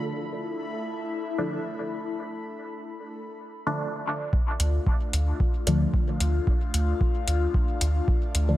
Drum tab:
HH |--------|--------|-x-x-x-x|-x-x-x-x|
BD |--------|--------|o-o-o-o-|o-o-o-o-|